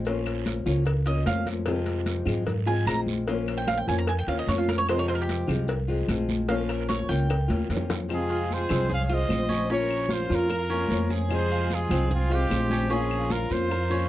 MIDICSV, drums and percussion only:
0, 0, Header, 1, 2, 480
1, 0, Start_track
1, 0, Key_signature, -4, "minor"
1, 0, Tempo, 401338
1, 73, Time_signature, 4, 2, 24, 8
1, 16848, End_track
2, 0, Start_track
2, 0, Title_t, "Drums"
2, 60, Note_on_c, 9, 70, 71
2, 73, Note_on_c, 9, 63, 38
2, 74, Note_on_c, 9, 74, 78
2, 81, Note_on_c, 9, 56, 116
2, 180, Note_off_c, 9, 70, 0
2, 193, Note_off_c, 9, 63, 0
2, 194, Note_off_c, 9, 74, 0
2, 200, Note_off_c, 9, 56, 0
2, 310, Note_on_c, 9, 70, 31
2, 313, Note_on_c, 9, 75, 74
2, 317, Note_on_c, 9, 63, 36
2, 318, Note_on_c, 9, 56, 74
2, 430, Note_off_c, 9, 70, 0
2, 432, Note_off_c, 9, 75, 0
2, 437, Note_off_c, 9, 63, 0
2, 438, Note_off_c, 9, 56, 0
2, 548, Note_on_c, 9, 70, 79
2, 550, Note_on_c, 9, 63, 99
2, 550, Note_on_c, 9, 73, 73
2, 558, Note_on_c, 9, 56, 70
2, 668, Note_off_c, 9, 70, 0
2, 670, Note_off_c, 9, 63, 0
2, 670, Note_off_c, 9, 73, 0
2, 678, Note_off_c, 9, 56, 0
2, 789, Note_on_c, 9, 70, 33
2, 792, Note_on_c, 9, 63, 36
2, 797, Note_on_c, 9, 73, 69
2, 909, Note_off_c, 9, 70, 0
2, 912, Note_off_c, 9, 63, 0
2, 917, Note_off_c, 9, 73, 0
2, 1022, Note_on_c, 9, 70, 79
2, 1032, Note_on_c, 9, 63, 37
2, 1034, Note_on_c, 9, 74, 78
2, 1036, Note_on_c, 9, 56, 106
2, 1037, Note_on_c, 9, 75, 68
2, 1142, Note_off_c, 9, 70, 0
2, 1152, Note_off_c, 9, 63, 0
2, 1154, Note_off_c, 9, 74, 0
2, 1156, Note_off_c, 9, 56, 0
2, 1157, Note_off_c, 9, 75, 0
2, 1265, Note_on_c, 9, 56, 71
2, 1268, Note_on_c, 9, 70, 32
2, 1274, Note_on_c, 9, 63, 38
2, 1385, Note_off_c, 9, 56, 0
2, 1387, Note_off_c, 9, 70, 0
2, 1393, Note_off_c, 9, 63, 0
2, 1509, Note_on_c, 9, 56, 69
2, 1509, Note_on_c, 9, 70, 75
2, 1512, Note_on_c, 9, 63, 91
2, 1516, Note_on_c, 9, 73, 75
2, 1628, Note_off_c, 9, 70, 0
2, 1629, Note_off_c, 9, 56, 0
2, 1631, Note_off_c, 9, 63, 0
2, 1636, Note_off_c, 9, 73, 0
2, 1749, Note_on_c, 9, 63, 93
2, 1755, Note_on_c, 9, 56, 73
2, 1760, Note_on_c, 9, 73, 75
2, 1764, Note_on_c, 9, 70, 30
2, 1868, Note_off_c, 9, 63, 0
2, 1875, Note_off_c, 9, 56, 0
2, 1880, Note_off_c, 9, 73, 0
2, 1884, Note_off_c, 9, 70, 0
2, 1981, Note_on_c, 9, 56, 117
2, 1988, Note_on_c, 9, 75, 71
2, 1995, Note_on_c, 9, 74, 70
2, 2000, Note_on_c, 9, 70, 75
2, 2101, Note_off_c, 9, 56, 0
2, 2107, Note_off_c, 9, 75, 0
2, 2115, Note_off_c, 9, 74, 0
2, 2120, Note_off_c, 9, 70, 0
2, 2226, Note_on_c, 9, 56, 72
2, 2235, Note_on_c, 9, 63, 37
2, 2250, Note_on_c, 9, 70, 32
2, 2345, Note_off_c, 9, 56, 0
2, 2354, Note_off_c, 9, 63, 0
2, 2369, Note_off_c, 9, 70, 0
2, 2464, Note_on_c, 9, 63, 62
2, 2465, Note_on_c, 9, 56, 77
2, 2472, Note_on_c, 9, 73, 72
2, 2478, Note_on_c, 9, 70, 75
2, 2584, Note_off_c, 9, 63, 0
2, 2585, Note_off_c, 9, 56, 0
2, 2591, Note_off_c, 9, 73, 0
2, 2598, Note_off_c, 9, 70, 0
2, 2713, Note_on_c, 9, 75, 73
2, 2715, Note_on_c, 9, 63, 36
2, 2715, Note_on_c, 9, 64, 91
2, 2722, Note_on_c, 9, 73, 72
2, 2731, Note_on_c, 9, 70, 31
2, 2833, Note_off_c, 9, 75, 0
2, 2834, Note_off_c, 9, 63, 0
2, 2834, Note_off_c, 9, 64, 0
2, 2842, Note_off_c, 9, 73, 0
2, 2850, Note_off_c, 9, 70, 0
2, 2949, Note_on_c, 9, 56, 103
2, 2955, Note_on_c, 9, 63, 37
2, 2955, Note_on_c, 9, 64, 83
2, 2961, Note_on_c, 9, 74, 77
2, 2969, Note_on_c, 9, 70, 73
2, 3069, Note_off_c, 9, 56, 0
2, 3075, Note_off_c, 9, 63, 0
2, 3075, Note_off_c, 9, 64, 0
2, 3081, Note_off_c, 9, 74, 0
2, 3089, Note_off_c, 9, 70, 0
2, 3190, Note_on_c, 9, 63, 37
2, 3205, Note_on_c, 9, 70, 32
2, 3309, Note_off_c, 9, 63, 0
2, 3324, Note_off_c, 9, 70, 0
2, 3430, Note_on_c, 9, 63, 84
2, 3439, Note_on_c, 9, 75, 76
2, 3441, Note_on_c, 9, 56, 69
2, 3449, Note_on_c, 9, 73, 76
2, 3450, Note_on_c, 9, 70, 75
2, 3550, Note_off_c, 9, 63, 0
2, 3558, Note_off_c, 9, 75, 0
2, 3561, Note_off_c, 9, 56, 0
2, 3569, Note_off_c, 9, 70, 0
2, 3569, Note_off_c, 9, 73, 0
2, 3666, Note_on_c, 9, 63, 86
2, 3686, Note_on_c, 9, 70, 30
2, 3687, Note_on_c, 9, 73, 79
2, 3786, Note_off_c, 9, 63, 0
2, 3805, Note_off_c, 9, 70, 0
2, 3806, Note_off_c, 9, 73, 0
2, 3918, Note_on_c, 9, 56, 112
2, 3926, Note_on_c, 9, 74, 76
2, 3927, Note_on_c, 9, 70, 75
2, 4037, Note_off_c, 9, 56, 0
2, 4045, Note_off_c, 9, 74, 0
2, 4047, Note_off_c, 9, 70, 0
2, 4161, Note_on_c, 9, 63, 37
2, 4162, Note_on_c, 9, 75, 73
2, 4164, Note_on_c, 9, 56, 74
2, 4165, Note_on_c, 9, 70, 32
2, 4281, Note_off_c, 9, 63, 0
2, 4282, Note_off_c, 9, 75, 0
2, 4284, Note_off_c, 9, 56, 0
2, 4284, Note_off_c, 9, 70, 0
2, 4396, Note_on_c, 9, 56, 72
2, 4396, Note_on_c, 9, 63, 92
2, 4397, Note_on_c, 9, 73, 72
2, 4399, Note_on_c, 9, 70, 77
2, 4515, Note_off_c, 9, 63, 0
2, 4516, Note_off_c, 9, 56, 0
2, 4516, Note_off_c, 9, 73, 0
2, 4518, Note_off_c, 9, 70, 0
2, 4646, Note_on_c, 9, 70, 33
2, 4650, Note_on_c, 9, 73, 72
2, 4766, Note_off_c, 9, 70, 0
2, 4770, Note_off_c, 9, 73, 0
2, 4873, Note_on_c, 9, 56, 107
2, 4877, Note_on_c, 9, 70, 75
2, 4877, Note_on_c, 9, 75, 67
2, 4880, Note_on_c, 9, 63, 37
2, 4889, Note_on_c, 9, 74, 75
2, 4992, Note_off_c, 9, 56, 0
2, 4997, Note_off_c, 9, 70, 0
2, 4997, Note_off_c, 9, 75, 0
2, 4999, Note_off_c, 9, 63, 0
2, 5009, Note_off_c, 9, 74, 0
2, 5115, Note_on_c, 9, 63, 36
2, 5119, Note_on_c, 9, 56, 71
2, 5123, Note_on_c, 9, 70, 31
2, 5234, Note_off_c, 9, 63, 0
2, 5239, Note_off_c, 9, 56, 0
2, 5243, Note_off_c, 9, 70, 0
2, 5363, Note_on_c, 9, 63, 90
2, 5367, Note_on_c, 9, 56, 71
2, 5371, Note_on_c, 9, 70, 73
2, 5371, Note_on_c, 9, 73, 77
2, 5483, Note_off_c, 9, 63, 0
2, 5487, Note_off_c, 9, 56, 0
2, 5490, Note_off_c, 9, 70, 0
2, 5491, Note_off_c, 9, 73, 0
2, 5602, Note_on_c, 9, 63, 94
2, 5607, Note_on_c, 9, 56, 75
2, 5609, Note_on_c, 9, 73, 75
2, 5611, Note_on_c, 9, 70, 30
2, 5722, Note_off_c, 9, 63, 0
2, 5726, Note_off_c, 9, 56, 0
2, 5728, Note_off_c, 9, 73, 0
2, 5731, Note_off_c, 9, 70, 0
2, 5844, Note_on_c, 9, 75, 76
2, 5847, Note_on_c, 9, 70, 75
2, 5850, Note_on_c, 9, 74, 77
2, 5851, Note_on_c, 9, 63, 37
2, 5853, Note_on_c, 9, 56, 109
2, 5964, Note_off_c, 9, 75, 0
2, 5967, Note_off_c, 9, 70, 0
2, 5969, Note_off_c, 9, 74, 0
2, 5971, Note_off_c, 9, 63, 0
2, 5973, Note_off_c, 9, 56, 0
2, 6086, Note_on_c, 9, 70, 30
2, 6089, Note_on_c, 9, 56, 78
2, 6091, Note_on_c, 9, 63, 37
2, 6205, Note_off_c, 9, 70, 0
2, 6208, Note_off_c, 9, 56, 0
2, 6211, Note_off_c, 9, 63, 0
2, 6324, Note_on_c, 9, 63, 60
2, 6326, Note_on_c, 9, 70, 75
2, 6330, Note_on_c, 9, 56, 75
2, 6331, Note_on_c, 9, 73, 76
2, 6444, Note_off_c, 9, 63, 0
2, 6446, Note_off_c, 9, 70, 0
2, 6449, Note_off_c, 9, 56, 0
2, 6451, Note_off_c, 9, 73, 0
2, 6563, Note_on_c, 9, 70, 32
2, 6564, Note_on_c, 9, 63, 36
2, 6564, Note_on_c, 9, 64, 93
2, 6568, Note_on_c, 9, 75, 71
2, 6571, Note_on_c, 9, 73, 75
2, 6683, Note_off_c, 9, 63, 0
2, 6683, Note_off_c, 9, 64, 0
2, 6683, Note_off_c, 9, 70, 0
2, 6687, Note_off_c, 9, 75, 0
2, 6691, Note_off_c, 9, 73, 0
2, 6791, Note_on_c, 9, 70, 75
2, 6805, Note_on_c, 9, 56, 112
2, 6806, Note_on_c, 9, 63, 40
2, 6809, Note_on_c, 9, 74, 73
2, 6911, Note_off_c, 9, 70, 0
2, 6924, Note_off_c, 9, 56, 0
2, 6926, Note_off_c, 9, 63, 0
2, 6929, Note_off_c, 9, 74, 0
2, 7039, Note_on_c, 9, 70, 31
2, 7053, Note_on_c, 9, 63, 38
2, 7159, Note_off_c, 9, 70, 0
2, 7173, Note_off_c, 9, 63, 0
2, 7278, Note_on_c, 9, 75, 68
2, 7280, Note_on_c, 9, 63, 93
2, 7284, Note_on_c, 9, 56, 69
2, 7285, Note_on_c, 9, 70, 76
2, 7285, Note_on_c, 9, 73, 76
2, 7398, Note_off_c, 9, 75, 0
2, 7400, Note_off_c, 9, 63, 0
2, 7403, Note_off_c, 9, 56, 0
2, 7404, Note_off_c, 9, 73, 0
2, 7405, Note_off_c, 9, 70, 0
2, 7522, Note_on_c, 9, 63, 92
2, 7522, Note_on_c, 9, 73, 74
2, 7528, Note_on_c, 9, 70, 30
2, 7641, Note_off_c, 9, 63, 0
2, 7641, Note_off_c, 9, 73, 0
2, 7648, Note_off_c, 9, 70, 0
2, 7758, Note_on_c, 9, 56, 117
2, 7762, Note_on_c, 9, 74, 73
2, 7763, Note_on_c, 9, 63, 37
2, 7766, Note_on_c, 9, 70, 72
2, 7878, Note_off_c, 9, 56, 0
2, 7881, Note_off_c, 9, 74, 0
2, 7882, Note_off_c, 9, 63, 0
2, 7885, Note_off_c, 9, 70, 0
2, 8004, Note_on_c, 9, 63, 38
2, 8005, Note_on_c, 9, 75, 70
2, 8008, Note_on_c, 9, 56, 74
2, 8008, Note_on_c, 9, 70, 32
2, 8124, Note_off_c, 9, 63, 0
2, 8125, Note_off_c, 9, 75, 0
2, 8127, Note_off_c, 9, 56, 0
2, 8127, Note_off_c, 9, 70, 0
2, 8236, Note_on_c, 9, 70, 80
2, 8248, Note_on_c, 9, 63, 101
2, 8250, Note_on_c, 9, 56, 75
2, 8250, Note_on_c, 9, 73, 75
2, 8355, Note_off_c, 9, 70, 0
2, 8368, Note_off_c, 9, 63, 0
2, 8369, Note_off_c, 9, 73, 0
2, 8370, Note_off_c, 9, 56, 0
2, 8484, Note_on_c, 9, 70, 32
2, 8491, Note_on_c, 9, 63, 37
2, 8499, Note_on_c, 9, 73, 73
2, 8604, Note_off_c, 9, 70, 0
2, 8611, Note_off_c, 9, 63, 0
2, 8618, Note_off_c, 9, 73, 0
2, 8725, Note_on_c, 9, 70, 79
2, 8731, Note_on_c, 9, 63, 38
2, 8732, Note_on_c, 9, 75, 71
2, 8737, Note_on_c, 9, 56, 109
2, 8737, Note_on_c, 9, 74, 79
2, 8844, Note_off_c, 9, 70, 0
2, 8851, Note_off_c, 9, 63, 0
2, 8852, Note_off_c, 9, 75, 0
2, 8856, Note_off_c, 9, 56, 0
2, 8856, Note_off_c, 9, 74, 0
2, 8966, Note_on_c, 9, 63, 93
2, 8970, Note_on_c, 9, 56, 73
2, 8981, Note_on_c, 9, 70, 32
2, 9085, Note_off_c, 9, 63, 0
2, 9090, Note_off_c, 9, 56, 0
2, 9101, Note_off_c, 9, 70, 0
2, 9132, Note_on_c, 9, 63, 83
2, 9209, Note_on_c, 9, 56, 70
2, 9214, Note_on_c, 9, 70, 77
2, 9222, Note_on_c, 9, 73, 73
2, 9252, Note_off_c, 9, 63, 0
2, 9287, Note_on_c, 9, 64, 107
2, 9329, Note_off_c, 9, 56, 0
2, 9333, Note_off_c, 9, 70, 0
2, 9341, Note_off_c, 9, 73, 0
2, 9407, Note_off_c, 9, 64, 0
2, 9446, Note_on_c, 9, 56, 74
2, 9446, Note_on_c, 9, 60, 88
2, 9448, Note_on_c, 9, 64, 95
2, 9449, Note_on_c, 9, 70, 29
2, 9457, Note_on_c, 9, 73, 76
2, 9566, Note_off_c, 9, 56, 0
2, 9566, Note_off_c, 9, 60, 0
2, 9568, Note_off_c, 9, 64, 0
2, 9569, Note_off_c, 9, 70, 0
2, 9576, Note_off_c, 9, 73, 0
2, 9690, Note_on_c, 9, 75, 73
2, 9694, Note_on_c, 9, 70, 72
2, 9696, Note_on_c, 9, 63, 38
2, 9697, Note_on_c, 9, 74, 73
2, 9810, Note_off_c, 9, 75, 0
2, 9813, Note_off_c, 9, 70, 0
2, 9816, Note_off_c, 9, 63, 0
2, 9816, Note_off_c, 9, 74, 0
2, 9931, Note_on_c, 9, 63, 38
2, 9939, Note_on_c, 9, 70, 32
2, 10051, Note_off_c, 9, 63, 0
2, 10058, Note_off_c, 9, 70, 0
2, 10173, Note_on_c, 9, 63, 57
2, 10181, Note_on_c, 9, 73, 76
2, 10185, Note_on_c, 9, 70, 75
2, 10293, Note_off_c, 9, 63, 0
2, 10301, Note_off_c, 9, 73, 0
2, 10305, Note_off_c, 9, 70, 0
2, 10396, Note_on_c, 9, 75, 69
2, 10415, Note_on_c, 9, 63, 36
2, 10415, Note_on_c, 9, 64, 93
2, 10418, Note_on_c, 9, 73, 72
2, 10428, Note_on_c, 9, 70, 33
2, 10516, Note_off_c, 9, 75, 0
2, 10534, Note_off_c, 9, 63, 0
2, 10534, Note_off_c, 9, 64, 0
2, 10537, Note_off_c, 9, 73, 0
2, 10548, Note_off_c, 9, 70, 0
2, 10641, Note_on_c, 9, 63, 38
2, 10641, Note_on_c, 9, 64, 82
2, 10657, Note_on_c, 9, 70, 75
2, 10664, Note_on_c, 9, 74, 73
2, 10760, Note_off_c, 9, 63, 0
2, 10760, Note_off_c, 9, 64, 0
2, 10776, Note_off_c, 9, 70, 0
2, 10783, Note_off_c, 9, 74, 0
2, 10880, Note_on_c, 9, 63, 35
2, 10902, Note_on_c, 9, 70, 29
2, 10999, Note_off_c, 9, 63, 0
2, 11022, Note_off_c, 9, 70, 0
2, 11110, Note_on_c, 9, 63, 88
2, 11124, Note_on_c, 9, 75, 73
2, 11133, Note_on_c, 9, 73, 76
2, 11135, Note_on_c, 9, 70, 74
2, 11229, Note_off_c, 9, 63, 0
2, 11244, Note_off_c, 9, 75, 0
2, 11253, Note_off_c, 9, 73, 0
2, 11255, Note_off_c, 9, 70, 0
2, 11353, Note_on_c, 9, 63, 89
2, 11370, Note_on_c, 9, 70, 30
2, 11382, Note_on_c, 9, 73, 74
2, 11473, Note_off_c, 9, 63, 0
2, 11490, Note_off_c, 9, 70, 0
2, 11502, Note_off_c, 9, 73, 0
2, 11600, Note_on_c, 9, 70, 75
2, 11616, Note_on_c, 9, 74, 76
2, 11720, Note_off_c, 9, 70, 0
2, 11735, Note_off_c, 9, 74, 0
2, 11848, Note_on_c, 9, 75, 71
2, 11850, Note_on_c, 9, 70, 32
2, 11968, Note_off_c, 9, 75, 0
2, 11970, Note_off_c, 9, 70, 0
2, 12066, Note_on_c, 9, 63, 99
2, 12075, Note_on_c, 9, 70, 76
2, 12087, Note_on_c, 9, 73, 75
2, 12185, Note_off_c, 9, 63, 0
2, 12194, Note_off_c, 9, 70, 0
2, 12207, Note_off_c, 9, 73, 0
2, 12308, Note_on_c, 9, 63, 39
2, 12321, Note_on_c, 9, 70, 33
2, 12336, Note_on_c, 9, 73, 71
2, 12428, Note_off_c, 9, 63, 0
2, 12440, Note_off_c, 9, 70, 0
2, 12456, Note_off_c, 9, 73, 0
2, 12553, Note_on_c, 9, 70, 73
2, 12554, Note_on_c, 9, 63, 39
2, 12564, Note_on_c, 9, 75, 69
2, 12572, Note_on_c, 9, 74, 73
2, 12673, Note_off_c, 9, 70, 0
2, 12674, Note_off_c, 9, 63, 0
2, 12684, Note_off_c, 9, 75, 0
2, 12692, Note_off_c, 9, 74, 0
2, 12787, Note_on_c, 9, 63, 38
2, 12796, Note_on_c, 9, 70, 31
2, 12907, Note_off_c, 9, 63, 0
2, 12916, Note_off_c, 9, 70, 0
2, 13020, Note_on_c, 9, 63, 91
2, 13037, Note_on_c, 9, 70, 74
2, 13048, Note_on_c, 9, 73, 74
2, 13139, Note_off_c, 9, 63, 0
2, 13157, Note_off_c, 9, 70, 0
2, 13167, Note_off_c, 9, 73, 0
2, 13267, Note_on_c, 9, 63, 88
2, 13282, Note_on_c, 9, 70, 31
2, 13294, Note_on_c, 9, 73, 73
2, 13386, Note_off_c, 9, 63, 0
2, 13402, Note_off_c, 9, 70, 0
2, 13414, Note_off_c, 9, 73, 0
2, 13514, Note_on_c, 9, 63, 39
2, 13522, Note_on_c, 9, 75, 76
2, 13527, Note_on_c, 9, 70, 75
2, 13530, Note_on_c, 9, 74, 76
2, 13634, Note_off_c, 9, 63, 0
2, 13641, Note_off_c, 9, 75, 0
2, 13646, Note_off_c, 9, 70, 0
2, 13650, Note_off_c, 9, 74, 0
2, 13748, Note_on_c, 9, 63, 37
2, 13766, Note_on_c, 9, 70, 33
2, 13868, Note_off_c, 9, 63, 0
2, 13885, Note_off_c, 9, 70, 0
2, 13992, Note_on_c, 9, 63, 64
2, 14004, Note_on_c, 9, 73, 74
2, 14005, Note_on_c, 9, 70, 79
2, 14111, Note_off_c, 9, 63, 0
2, 14123, Note_off_c, 9, 73, 0
2, 14125, Note_off_c, 9, 70, 0
2, 14225, Note_on_c, 9, 63, 37
2, 14225, Note_on_c, 9, 64, 87
2, 14243, Note_on_c, 9, 70, 32
2, 14246, Note_on_c, 9, 75, 72
2, 14251, Note_on_c, 9, 73, 75
2, 14345, Note_off_c, 9, 63, 0
2, 14345, Note_off_c, 9, 64, 0
2, 14363, Note_off_c, 9, 70, 0
2, 14366, Note_off_c, 9, 75, 0
2, 14371, Note_off_c, 9, 73, 0
2, 14466, Note_on_c, 9, 63, 37
2, 14466, Note_on_c, 9, 64, 81
2, 14482, Note_on_c, 9, 70, 73
2, 14487, Note_on_c, 9, 74, 78
2, 14585, Note_off_c, 9, 63, 0
2, 14585, Note_off_c, 9, 64, 0
2, 14602, Note_off_c, 9, 70, 0
2, 14607, Note_off_c, 9, 74, 0
2, 14713, Note_on_c, 9, 63, 35
2, 14737, Note_on_c, 9, 70, 31
2, 14832, Note_off_c, 9, 63, 0
2, 14857, Note_off_c, 9, 70, 0
2, 14956, Note_on_c, 9, 63, 84
2, 14965, Note_on_c, 9, 75, 71
2, 14967, Note_on_c, 9, 73, 78
2, 14976, Note_on_c, 9, 70, 71
2, 15076, Note_off_c, 9, 63, 0
2, 15085, Note_off_c, 9, 75, 0
2, 15087, Note_off_c, 9, 73, 0
2, 15095, Note_off_c, 9, 70, 0
2, 15191, Note_on_c, 9, 63, 89
2, 15213, Note_on_c, 9, 73, 75
2, 15216, Note_on_c, 9, 70, 30
2, 15311, Note_off_c, 9, 63, 0
2, 15333, Note_off_c, 9, 73, 0
2, 15335, Note_off_c, 9, 70, 0
2, 15449, Note_on_c, 9, 74, 71
2, 15456, Note_on_c, 9, 70, 72
2, 15568, Note_off_c, 9, 74, 0
2, 15576, Note_off_c, 9, 70, 0
2, 15678, Note_on_c, 9, 63, 36
2, 15680, Note_on_c, 9, 75, 70
2, 15688, Note_on_c, 9, 70, 30
2, 15798, Note_off_c, 9, 63, 0
2, 15799, Note_off_c, 9, 75, 0
2, 15807, Note_off_c, 9, 70, 0
2, 15911, Note_on_c, 9, 63, 98
2, 15914, Note_on_c, 9, 73, 71
2, 15922, Note_on_c, 9, 70, 76
2, 16031, Note_off_c, 9, 63, 0
2, 16033, Note_off_c, 9, 73, 0
2, 16041, Note_off_c, 9, 70, 0
2, 16148, Note_on_c, 9, 73, 72
2, 16158, Note_on_c, 9, 63, 36
2, 16160, Note_on_c, 9, 70, 33
2, 16267, Note_off_c, 9, 73, 0
2, 16277, Note_off_c, 9, 63, 0
2, 16280, Note_off_c, 9, 70, 0
2, 16388, Note_on_c, 9, 63, 36
2, 16390, Note_on_c, 9, 74, 77
2, 16401, Note_on_c, 9, 70, 78
2, 16402, Note_on_c, 9, 75, 71
2, 16508, Note_off_c, 9, 63, 0
2, 16510, Note_off_c, 9, 74, 0
2, 16520, Note_off_c, 9, 70, 0
2, 16521, Note_off_c, 9, 75, 0
2, 16632, Note_on_c, 9, 70, 31
2, 16637, Note_on_c, 9, 63, 36
2, 16752, Note_off_c, 9, 70, 0
2, 16757, Note_off_c, 9, 63, 0
2, 16848, End_track
0, 0, End_of_file